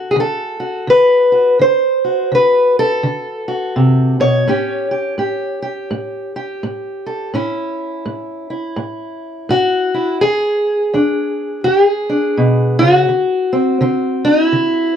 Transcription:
Already playing: D3 F#4 A4
0.11 G#4
0.16 D3
0.20 A4
0.60 F#4
0.87 D3 B4
1.32 F#4
1.59 D3 C5
2.05 F#4
2.32 D3 B4
2.79 A4
3.03 D3
3.48 F#4
3.76 C3
4.20 B2 C#5
4.47 A2 C#4 G4
4.91 G4
5.18 A2 G4
5.62 G4
5.91 A2
6.36 G4
6.63 A2
7.06 A4
7.34 A2 C#4 E4
8.05 A2
8.50 E4
8.76 A2
9.49 A2 F#4
9.94 E4
10.21 E2 G#4
10.93 E2 D4
11.64 E2 G4
11.84 G#4
12.09 D4
12.37 B2
12.79 C#3 F#4
13.09 D3
13.53 C4
13.81 D3 C4
14.25 D#4
14.45 E4
14.52 D3

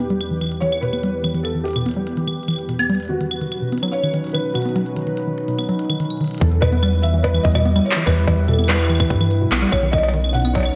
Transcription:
Already playing: E2 E3 B3 G4 B4
0.10 G3, closed hi-hat
0.21 closed hi-hat, claves
0.31 E3
0.41 E3, closed hi-hat, claves
0.44 claves
0.47 claves
0.49 closed hi-hat, claves
0.60 E3 C#5, closed hi-hat
0.72 closed hi-hat, claves
0.81 B2 B4, closed hi-hat
0.93 B3, closed hi-hat, claves
1.03 G3, closed hi-hat
1.24 E3, closed hi-hat, claves
1.34 E3, closed hi-hat
1.43 A4, closed hi-hat, claves
1.55 E3
1.64 G4, closed hi-hat
1.68 closed hi-hat
1.71 closed hi-hat
1.73 B2, closed hi-hat
1.76 closed hi-hat, claves
1.81 closed hi-hat
1.84 closed hi-hat
1.86 B3, closed hi-hat
1.89 closed hi-hat
1.91 closed hi-hat
1.94 G3, closed hi-hat
2.07 closed hi-hat
2.17 E3, closed hi-hat
2.27 E3, claves
2.43 closed hi-hat
2.48 E3, closed hi-hat, claves
2.51 claves
2.53 claves
2.56 closed hi-hat, claves
2.69 B2, closed hi-hat
2.79 B3, claves
2.90 G3, closed hi-hat
2.95 closed hi-hat
3.00 closed hi-hat
3.03 closed hi-hat
3.05 closed hi-hat
3.08 B2 D#3 F#3 C#4 D#4 F#4 B4, closed hi-hat
3.21 D#3, closed hi-hat
3.31 closed hi-hat, claves
3.41 D#3, closed hi-hat
3.52 closed hi-hat, claves
3.62 B2
3.72 B3, closed hi-hat
3.78 closed hi-hat
3.83 F#3, closed hi-hat, claves
3.88 C#5, closed hi-hat
3.93 closed hi-hat
4.03 D#3, closed hi-hat, claves
4.14 D#3, closed hi-hat
4.24 closed hi-hat
4.27 closed hi-hat
4.29 closed hi-hat
4.32 D#3 B4, closed hi-hat
4.34 closed hi-hat, claves
4.54 B2 F#4, closed hi-hat, claves
4.62 closed hi-hat
4.65 B3, closed hi-hat
4.69 closed hi-hat
4.76 F#3, closed hi-hat
4.86 closed hi-hat
4.96 D#3, closed hi-hat
5.07 D#3, closed hi-hat
5.17 closed hi-hat
5.27 D#3
5.38 closed hi-hat, claves
5.48 B2, closed hi-hat
5.59 B3, closed hi-hat, claves
5.69 F#3, closed hi-hat
5.79 closed hi-hat
5.90 D#3, closed hi-hat, claves
6.00 D#3, closed hi-hat
6.10 closed hi-hat, claves
6.17 closed hi-hat
6.21 D#3, closed hi-hat
6.24 closed hi-hat
6.28 closed hi-hat
6.31 closed hi-hat
6.34 closed hi-hat
6.38 E2 G3 E4 A4, closed hi-hat
6.41 E3 B3, kick, closed hi-hat
6.52 closed hi-hat
6.61 B2 B4, kick, closed hi-hat, cowbell, claves
6.72 B3, closed hi-hat
6.83 G3, closed hi-hat, claves
7.02 E3 E5, closed hi-hat, claves
7.14 E3 C#5
7.23 B4, kick, closed hi-hat, cowbell
7.34 E3, closed hi-hat, claves
7.43 E2 D#5, kick, closed hi-hat
7.52 B2, closed hi-hat
7.55 closed hi-hat, cowbell, claves
7.59 closed hi-hat
7.65 B3, closed hi-hat
7.76 G3, claves
7.85 C#5, closed hi-hat
7.91 clap
7.96 E3, closed hi-hat
8.06 E2 E3 B4, kick, claves
8.17 closed hi-hat
8.28 E3, kick, closed hi-hat, cowbell
8.38 closed hi-hat
8.47 B2 A4, closed hi-hat, claves
8.53 claves
8.59 B3, claves
8.64 B4, claves
8.69 G3, clap
8.79 closed hi-hat, claves
8.84 claves
8.90 E3, closed hi-hat, claves
8.95 claves
9.00 E3, kick, closed hi-hat, claves
9.10 G2, kick, closed hi-hat
9.21 E3, closed hi-hat, claves
9.31 closed hi-hat
9.41 B2
9.52 B1 B3, clap, claves
9.62 G3, closed hi-hat
9.71 B1 D#3 C#4 C#5, kick, closed hi-hat, claves
9.83 D#3, closed hi-hat
9.92 D#3 D#5, kick, closed hi-hat, cowbell, claves
9.98 cowbell
10.03 closed hi-hat, cowbell
10.09 cowbell
10.14 D#3, closed hi-hat
10.24 claves
10.29 F#5, claves
10.34 B2, closed hi-hat, claves
10.37 closed hi-hat
10.40 closed hi-hat, claves
10.42 B3, closed hi-hat
10.45 closed hi-hat, claves
10.54 F#3 C#5, kick, closed hi-hat, cowbell
10.58 cowbell
10.60 cowbell
10.63 closed hi-hat, cowbell, claves

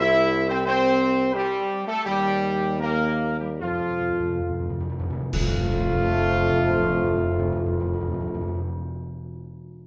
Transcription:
Already playing: C2 C3
0.00 E4 E5
0.50 C4 C5
0.66 C4 C5
1.34 G3 G4
1.88 A3 A4
2.05 D#2 G3 G4
2.79 A#3 A#4
3.39 G3 G4
3.60 F2 F3 F4
3.70 F2
3.81 F2
3.90 F2
4.00 F2
4.10 F2
4.20 F2
4.30 F2
4.40 F2
4.50 F2
4.60 F2
4.70 F2
4.80 F2
4.90 F2
5.00 F2
5.10 F2
5.19 F2
5.32 F2 F3 A3 F4, concert bass drum, crash
5.40 F2
5.47 F2
5.54 F2
5.60 F2
5.67 F2
5.73 F2
5.81 F2
5.88 F2
5.95 F2
6.01 F2
6.08 F2
6.15 F2
6.22 F2
6.29 F2
6.36 F2
6.43 F2
6.51 F2
6.57 F2
6.64 F2
6.70 F2
6.77 F2
6.83 F2
6.90 F2
6.96 F2
7.03 F2
7.10 F2
7.18 F2
7.25 F2
7.32 F2
7.39 F2
7.46 F2
7.52 F2
7.59 F2
7.66 F2
7.73 F2
7.80 F2
7.86 F2
7.93 F2
8.01 F2
8.08 F2
8.14 F2
8.20 F2
8.27 F2
8.34 F2
8.41 F2
8.47 F2
8.54 F2

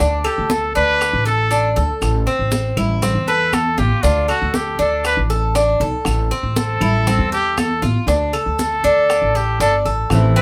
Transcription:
0.00 D2 D4, high bongo, high conga, maracas
0.24 G4 A4, high conga, claves, maracas
0.38 D2
0.50 A4, high bongo, high conga, maracas
0.75 D2 D4 B4, high bongo, high conga, maracas
1.01 high bongo, high conga, claves, maracas
1.13 A1
1.25 A4, high bongo, high conga, maracas
1.51 D4, low bongo, high conga, maracas
1.76 D2 A4, low bongo, maracas
2.01 A1, high bongo, high conga, claves, maracas
2.26 C4, high bongo, high conga, maracas
2.39 A1
2.51 high bongo, high conga, maracas
2.77 A1 E4, high bongo, high conga, low conga, claves, maracas
3.02 C4, high bongo, high conga, low conga, maracas
3.15 E2
3.28 A4 B4, high conga, maracas
3.53 A4, high bongo, low bongo, high conga, claves, maracas
3.78 A1 F4 G4, high bongo, high conga, maracas
4.03 D2 D4 F4, high bongo, high conga, maracas
4.28 F#4 A4, high conga, claves, maracas
4.42 D2
4.54 G4, high bongo, high conga, maracas
4.79 D2 D4 A4, high bongo, high conga, maracas
5.04 B4, high bongo, high conga, claves, maracas
5.17 A1
5.30 A4, high bongo, high conga, maracas
5.55 D4, high bongo, low bongo, high conga, maracas
5.80 B1 A4, high bongo, maracas
6.05 A1, high bongo, high conga, claves, maracas
6.31 C4, high bongo, high conga, maracas
6.43 A1
6.56 A4, high bongo, high conga, maracas
6.81 A1 E4, high bongo, high conga, low conga, claves, maracas
7.07 C4, high bongo, high conga, low conga, maracas
7.19 E2
7.32 G4 A4, high conga, maracas
7.58 A4, high bongo, low bongo, high conga, claves, maracas
7.82 A1 F4, high bongo, high conga, maracas
8.07 D2 D4, high bongo, high conga, maracas
8.33 A4, high conga, claves, maracas
8.46 D2
8.59 A4, high bongo, high conga, maracas
8.84 D2 D4, high bongo, high conga, maracas
9.10 high bongo, high conga, claves, maracas
9.22 A1
9.35 G4 A4, high bongo, high conga, maracas
9.60 G1 D4 A4, high bongo, low bongo, high conga, maracas
9.85 A1 A4, high bongo, maracas
10.10 A1 E3 A3 C4 E4, high bongo, high conga, claves, maracas
10.36 C4 B4, high bongo, high conga, maracas

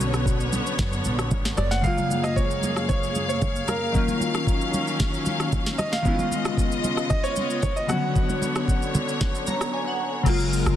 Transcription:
Already playing: B1 D3 F#3 B3 C#4 F#4 B4 C#5
0.00 high conga, shaker
0.14 cross-stick, shaker
0.26 kick, shaker
0.40 shaker
0.53 high conga, shaker
0.66 shaker
0.79 F#2, kick, snare, low conga, shaker
0.93 shaker
1.04 A#1, high conga, shaker
1.19 cross-stick, shaker
1.31 G#1, kick, high conga, low conga, shaker
1.45 snare, shaker
1.57 F#1 D5, cross-stick, high conga, shaker
1.71 F#5, snare, shaker
1.81 F#2 C#3 F#3 G#3 A#3 G#4 F5, kick, shaker
1.86 A#3 F4
1.98 high conga, shaker
2.10 high conga, shaker
2.23 D#5, cross-stick, shaker
2.36 C#5, kick, shaker
2.51 shaker
2.63 high conga, shaker
2.76 cross-stick, shaker
2.89 C#5, kick, low conga, shaker
3.03 shaker
3.15 high conga, shaker
3.29 C#5, shaker
3.42 kick, high conga, low conga, shaker
3.56 shaker
3.68 A#4, cross-stick, high conga, shaker
3.92 D#3 F#3 A#3 C#4, kick, shaker
3.96 C#4 F4
4.08 high conga, shaker
4.21 high conga, shaker
4.34 cross-stick, shaker
4.47 kick, shaker
4.61 shaker
4.74 high conga, shaker
4.87 shaker
5.00 kick, snare, low conga, shaker
5.14 shaker
5.26 high conga, shaker
5.40 cross-stick, shaker
5.52 kick, high conga, low conga, shaker
5.66 snare, shaker
5.78 D#5, cross-stick, high conga, shaker
5.92 F5, snare
6.02 C#3 D#3 G#3 B3 F4 D#5, kick, shaker
6.07 C#4 E4
6.15 F4
6.19 high conga, shaker
6.31 high conga, shaker
6.45 cross-stick, shaker
6.58 kick, shaker
6.72 shaker
6.84 high conga, shaker
6.97 cross-stick, shaker
7.10 D#5, kick, low conga, shaker
7.24 C#5, shaker
7.36 high conga, shaker
7.50 shaker
7.63 C#5, kick, high conga, low conga, shaker
7.76 D#5, shaker
7.87 C#3 D3 F#3 B3 C#5 F#5, cross-stick, high conga, shaker
7.91 D3 C#4 F#4
8.16 kick, shaker
8.29 high conga, shaker
8.42 high conga, shaker
8.56 cross-stick, shaker
8.68 kick, shaker
8.82 shaker
8.95 high conga, low conga, shaker
9.09 shaker
9.21 kick, snare, low conga, shaker
9.35 shaker
9.47 A#5, high conga, shaker
9.61 cross-stick, shaker
9.74 G#5
9.87 F#5
10.23 F#1 C#3 F#3 G#3 F4 A#4, kick, crash, shaker
10.28 A#3 F4
10.40 shaker
10.53 open hi-hat, shaker
10.66 F#1, cross-stick, shaker

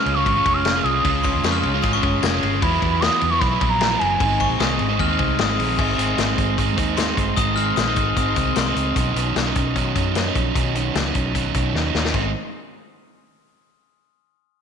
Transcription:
Already playing: C#3 G#3 C#4 F4 F6
0.06 C#2 C#4, ride
0.14 C#3 G#3 C#4 F4 C#6
0.24 G#1 G#3 C#6, kick, ride
0.36 G#3 C#4 F4
0.45 F1 C#4, kick, ride
0.53 F6
0.65 G#3, snare, ride
0.76 C#3 G#3 C#4 F4
0.83 C2 F4 D#6, ride
1.04 C#2 C#3 G#3 C#4 F4, kick, ride
1.24 C#4 C6, kick, ride
1.34 D#2
1.44 F2 C#3 G#3 C#4 F4 C#6, snare, ride
1.52 F6
1.63 C#2 C#4, ride
1.74 C#3 G#3 C#4 F4
1.82 G#1 G#3 D#6, kick, snare, ride
1.93 G#3 C#4 F4 C#6
2.03 G1 C#4, kick, ride
2.23 F1 G#3 G#6, snare, ride
2.34 C#3 G#3 C#4 F4
2.42 G1 F4, ride
2.61 E2 E3 F#3 B3 E4 B5, kick, ride
2.81 E2 B3, kick, ride
2.91 B5
3.00 E3 F#3 B3 E4 D#6, snare, ride
3.21 E2 B3, ride
3.30 E3 F#3 B3 E4 C#6
3.39 B1 F#3 B5, kick, snare, ride
3.51 F#3 B3 E4
3.61 A#1 B3, kick, ride
3.70 A#5
3.81 F#3, snare, ride
3.91 E3 F#3 B3 E4
3.99 F#1 E4 G#5, ride
4.20 G#1 G#2 D#3 G#3 C4 D#4, kick, ride
4.40 C4 C#6, kick, ride
4.50 A#1
4.59 C2 D#3 G#3 C4 D#4 D#6, snare, ride
4.79 G#1 C4, ride
4.89 G#2 D#3 G#3 C4 D#4
4.99 D#2 G#3 F6, kick, ride
5.08 G#3 C4 D#4
5.19 C2 C4, kick, ride
5.39 G#1 G#3 D#6, snare, ride
5.49 G#2 D#3 G#3 C4 D#4
5.59 A#1 D#4, open hi-hat, ride
5.78 G#1 G#2 D#3 G#3 C4 D#4 G#5, kick, crash
5.97 G#1 G#2 D#3 G#3 C4 D#4, closed hi-hat
6.18 G#1 G#3, snare, closed hi-hat
6.27 G#3 C4 D#4
6.38 G#1 C4, kick, closed hi-hat
6.58 G#2 D#3 G#3 C4 D#4, kick, closed hi-hat
6.77 D#2 G#2 D#3 G#3 C4 D#4, kick, closed hi-hat
6.97 D#4 C6, snare, closed hi-hat
7.07 G#3 C4 D#4
7.17 G1 C4, kick, closed hi-hat
7.36 G#1 G#2 D#3 G#3 C4 D#4 D#6, kick, closed hi-hat
7.56 G#2 D#3 G#3 C4 D#4 F6, closed hi-hat
7.76 A#1 G#3 D#6, snare, closed hi-hat
7.86 G#3 C4 D#4
7.96 G#1 C4, kick, closed hi-hat
8.17 G#1 G#2 D#3 G#3 C4 D#4 D#6, kick, closed hi-hat
8.36 C2 G#2 D#3 G#3 C4 D#4, kick, closed hi-hat
8.56 C2 D#4 C6, snare, closed hi-hat
8.66 G#3 C4 D#4
8.76 C#2 C4, closed hi-hat
8.96 B1 B2 D#3 F#3 C#4 D#4, kick, closed hi-hat
9.16 B1 B2 D#3 F#3 B3 C#4 D#4, closed hi-hat
9.26 C#4
9.35 B1 F#3, snare, closed hi-hat
9.45 F#3 C#4 D#4
9.55 B1 C#4, kick, closed hi-hat
9.76 B2 D#3 F#3 C#4 D#4, kick, closed hi-hat
9.96 F#2 B2 D#3 F#3 C#4 D#4, kick, closed hi-hat
10.15 D#4, snare, closed hi-hat
10.26 F#3 C#4 D#4
10.35 A#1 C#4, kick, closed hi-hat
10.55 B1 B2 D#3 F#3 C#4 D#4, kick, closed hi-hat
10.75 B2 D#3 F#3 C#4 D#4, closed hi-hat
10.95 C#2 F#3, snare, closed hi-hat
11.05 F#3 C#4 D#4
11.15 B1 C#4, kick, closed hi-hat
11.34 B2 D#3 F#3 C#4 D#4, kick, closed hi-hat
11.54 B1 B2 D#3 F#3 C#4 D#4, kick, closed hi-hat
11.74 D#2 D#4, snare
11.84 F#3 C#4 D#4
11.95 D#2 C#4, snare
12.05 snare
12.13 G#1 G#2 D#3 G#3 C4 D#4, kick, crash

